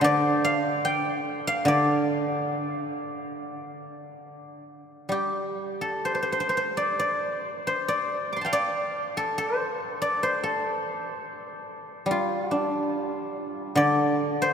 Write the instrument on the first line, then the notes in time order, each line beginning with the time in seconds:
guzheng
Already playing: A4 C5
0.01 D3 D5
0.45 F5
0.85 G5
1.22 F5
1.47 F5
1.65 D3 D5
5.09 G3 G4
5.81 A4
6.05 C5
6.15 C5
6.22 C5
6.32 C5
6.40 C5
6.49 C5
6.57 C5
6.77 D5
6.99 D5
7.67 C5
7.88 D5
8.33 C6 D6
8.41 G5 A5
8.46 F5
8.53 D5
9.17 A4
9.38 C5
10.02 D5
10.23 C5
10.44 A4
12.06 G3
12.11 F4
12.41 F#4
12.51 D4
12.60 G4
13.75 D3 D5
14.42 C5